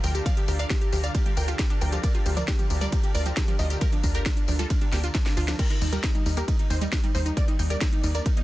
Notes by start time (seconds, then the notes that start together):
Already playing: D3 D4 F4 A4 A#4
0.03 D2 F3 A#4 G5, open hi-hat, tambourine
0.15 G4, closed hi-hat, tambourine
0.26 F3 D5 F5, kick, closed hi-hat, ride, tambourine
0.37 F3 G4, closed hi-hat
0.48 D2 G4 A#4, open hi-hat, tambourine
0.59 D4 D5 F5, closed hi-hat, tambourine
0.70 F3 G4, kick, snare, closed hi-hat, ride, tambourine
0.81 G4, closed hi-hat
0.92 D2 F3 G4, open hi-hat, tambourine
1.03 G3 D5 F5, closed hi-hat, tambourine
1.15 F4 G4, kick, closed hi-hat, ride, tambourine
1.26 G3 G4, closed hi-hat
1.37 D2 A#4 G5, open hi-hat, tambourine
1.48 F4 G4, closed hi-hat, tambourine
1.59 G4, kick, snare, closed hi-hat, ride
1.70 D4 G4, closed hi-hat
1.81 D2 F3 A#4 G5, open hi-hat, tambourine
1.92 F3 G4, closed hi-hat, tambourine
2.03 F3 A#4 D5, kick, closed hi-hat, ride, tambourine
2.15 F4 G4, closed hi-hat
2.26 D2 F3 G4, open hi-hat, tambourine
2.37 F3 A#4 D5, closed hi-hat, tambourine
2.48 A#3 G4, kick, snare, closed hi-hat, ride, tambourine
2.59 F3 G4, closed hi-hat
2.70 D2 F3 G4, open hi-hat, tambourine
2.81 G3 A#4 D5, closed hi-hat, tambourine
2.92 F3 G4, kick, closed hi-hat, ride, tambourine
3.03 G4, closed hi-hat
3.15 D2 A#4 D5, open hi-hat, tambourine
3.26 F3 G4, closed hi-hat, tambourine
3.37 F3 G4, kick, snare, closed hi-hat, ride, tambourine
3.48 F3 G4, closed hi-hat
3.59 D2 F3 G4 D#5, open hi-hat, tambourine
3.70 G4, closed hi-hat, tambourine
3.81 F3 G4 A#4, kick, closed hi-hat, ride
3.92 F3 D4, closed hi-hat
4.03 D2 D4 A#4, kick, open hi-hat, tambourine
4.15 D4 G4 A#4, closed hi-hat, tambourine
4.26 F3 D4, kick, snare, closed hi-hat, ride, tambourine
4.37 D4, closed hi-hat
4.48 D2 F3 D4, open hi-hat, tambourine
4.59 G3 F4 A4, closed hi-hat, tambourine
4.70 D4 F4, kick, closed hi-hat, ride, tambourine
4.81 G3 D4, closed hi-hat
4.92 D2 A#3 G4 A#4, snare, open hi-hat, tambourine
5.04 D4 F4, closed hi-hat, tambourine
5.15 D4, kick, snare, closed hi-hat, ride
5.26 D4, snare, closed hi-hat
5.37 D2 F3 D4 F4, open hi-hat, tambourine
5.48 F3 D4, snare, closed hi-hat, tambourine
5.59 G3 A#3 D#4 G4 A#4, kick, closed hi-hat, crash, ride, tambourine
5.70 D#4 A#4, closed hi-hat
5.81 D#2 G3 D#4, open hi-hat, tambourine
5.92 G3 G4 A#4, closed hi-hat, tambourine
6.03 D#4, kick, snare, closed hi-hat, ride, tambourine
6.15 G3 D#4, closed hi-hat
6.26 D#2 G3 D#4, open hi-hat, tambourine
6.37 A#3 G4 A#4, closed hi-hat, tambourine
6.48 G3 D#4, kick, closed hi-hat, ride, tambourine
6.59 D#4, closed hi-hat
6.70 D#2 D#4 C5 G5, open hi-hat, tambourine
6.81 G3 D#4, closed hi-hat, tambourine
6.92 G3 D#4, kick, snare, closed hi-hat, ride, tambourine
7.03 G3 D#4, closed hi-hat
7.15 D#2 G3 D#4 C5, open hi-hat, tambourine
7.26 D#4, closed hi-hat, tambourine
7.37 G3 D4 A#4 D5, kick, closed hi-hat, ride, tambourine
7.48 G3 D#4, closed hi-hat
7.59 D#2 D#4 G5, open hi-hat, tambourine
7.70 G4 A#4 D5, closed hi-hat, tambourine
7.81 G3 D#4, kick, snare, closed hi-hat, ride
7.92 D#4, closed hi-hat
8.03 D#2 G3 D#4, open hi-hat, tambourine
8.15 A#3 A#4 D5, closed hi-hat, tambourine
8.26 D#4 A#4, kick, closed hi-hat, ride
8.37 A#3 D#4, closed hi-hat